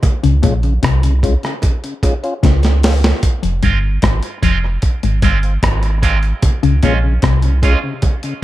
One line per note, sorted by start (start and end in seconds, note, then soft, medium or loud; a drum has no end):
0.03 kick loud
0.03 closed hi-hat medium
0.03 low conga medium
0.23 0.41 C#2 loud
0.23 0.35 C#3 medium
0.23 0.34 C#3 medium
0.23 closed hi-hat medium
0.43 0.79 A#1 medium
0.43 0.67 A#2 medium
0.43 0.54 G#3 medium
0.43 0.54 C#4 medium
0.43 0.54 F4 medium
0.43 kick medium
0.43 closed hi-hat medium
0.43 low conga medium
0.63 0.74 C#3 medium
0.63 closed hi-hat soft
0.83 1.36 C2 loud
0.83 1.07 C3 medium
0.83 kick loud
0.83 cross-stick loud
0.83 closed hi-hat medium
1.03 1.14 C#3 medium
1.03 closed hi-hat medium
1.23 1.34 G#3 medium
1.23 1.34 C#4 medium
1.23 1.34 F4 medium
1.23 kick medium
1.23 closed hi-hat medium
1.43 1.54 C#3 medium
1.43 cross-stick medium
1.43 closed hi-hat soft
1.62 kick loud
1.62 closed hi-hat medium
1.62 low conga medium
1.84 1.94 C#3 medium
1.84 closed hi-hat medium
2.03 2.14 G#3 medium
2.03 2.14 C#4 medium
2.03 2.14 F4 medium
2.03 kick medium
2.03 closed hi-hat medium
2.03 low conga medium
2.23 2.34 C#4 medium
2.23 2.34 F4 medium
2.23 closed hi-hat soft
2.43 3.13 C#2 medium
2.43 2.67 C#3 medium
2.43 kick loud
2.43 snare medium
2.43 closed hi-hat medium
2.43 high conga medium
2.63 2.74 C#3 medium
2.63 snare medium
2.63 closed hi-hat soft
2.63 high conga medium
2.83 2.94 G#3 medium
2.83 2.94 C#4 medium
2.83 2.94 F4 medium
2.83 snare medium
2.83 open hi-hat medium
2.83 low conga medium
3.03 3.14 C#3 medium
3.03 snare medium
3.23 kick loud
3.23 closed hi-hat medium
3.23 low conga medium
3.43 3.61 F1 loud
3.43 3.55 F2 medium
3.43 3.54 F2 medium
3.43 3.54 C3 medium
3.43 closed hi-hat medium
3.63 3.98 G1 medium
3.63 3.87 G2 medium
3.63 3.77 G#3 medium
3.63 3.74 G#3 medium
3.63 3.74 C4 medium
3.63 3.78 C4 medium
3.63 3.74 F4 medium
3.63 3.78 F4 medium
3.63 kick medium
3.63 closed hi-hat medium
3.63 low conga medium
3.83 3.94 F2 medium
3.83 3.94 C3 medium
4.02 4.21 G#1 loud
4.02 4.15 G#2 medium
4.02 kick loud
4.02 cross-stick loud
4.02 closed hi-hat medium
4.23 closed hi-hat medium
4.43 4.78 F1 medium
4.43 4.67 F2 medium
4.43 4.57 G#3 medium
4.43 4.54 G#3 medium
4.43 4.54 C4 medium
4.43 4.57 C4 medium
4.43 4.54 F4 medium
4.43 4.58 F4 medium
4.43 kick medium
4.43 closed hi-hat medium
4.64 4.74 C3 medium
4.82 kick loud
4.82 closed hi-hat medium
4.82 low conga medium
5.03 5.21 G#1 loud
5.03 5.15 G#2 medium
5.03 5.14 C3 medium
5.03 closed hi-hat soft
5.22 5.58 G1 medium
5.22 5.47 G2 medium
5.22 5.37 G#3 medium
5.22 5.34 G#3 medium
5.22 5.34 C4 medium
5.22 5.37 C4 medium
5.22 5.34 F4 medium
5.22 5.38 F4 medium
5.22 kick medium
5.22 closed hi-hat medium
5.43 5.54 C4 medium
5.43 5.54 F4 medium
5.43 closed hi-hat soft
5.63 6.33 G#1 medium
5.63 5.87 G#2 medium
5.63 kick loud
5.63 cross-stick loud
5.63 closed hi-hat medium
5.83 5.94 C3 medium
5.83 closed hi-hat soft
5.83 high conga medium
6.03 6.17 G#3 medium
6.03 6.14 G#3 medium
6.03 6.14 C4 medium
6.03 6.17 C4 medium
6.03 6.14 F4 medium
6.03 6.18 F4 medium
6.03 kick medium
6.03 closed hi-hat medium
6.03 low conga medium
6.23 6.34 F2 medium
6.23 6.34 C3 medium
6.23 muted clean electric guitar stroke soft
6.23 closed hi-hat soft
6.42 kick loud
6.42 closed hi-hat medium
6.42 low conga medium
6.63 6.81 C#2 loud
6.63 6.75 C#3 medium
6.63 6.74 C#3 medium
6.63 closed hi-hat soft
6.83 7.18 A#1 medium
6.83 7.07 A#2 medium
6.83 6.94 G#3 medium
6.83 6.97 G#3 medium
6.83 6.94 C#4 medium
6.83 6.98 C#4 medium
6.83 6.94 F4 medium
6.83 6.98 F4 medium
6.83 kick medium
6.83 closed hi-hat medium
6.83 low conga medium
7.03 7.14 C#3 medium
7.22 7.76 C2 loud
7.22 7.47 C3 medium
7.22 kick loud
7.22 cross-stick loud
7.22 closed hi-hat medium
7.42 7.54 C#3 medium
7.42 closed hi-hat medium
7.63 7.77 G#3 medium
7.63 7.74 G#3 medium
7.63 7.74 C#4 medium
7.63 7.78 C#4 loud
7.63 7.74 F4 medium
7.63 7.78 F4 loud
7.63 kick loud
7.63 closed hi-hat medium
7.83 7.94 C#3 medium
8.02 kick loud
8.02 closed hi-hat medium
8.02 low conga medium
8.23 8.34 C#3 medium
8.23 closed hi-hat medium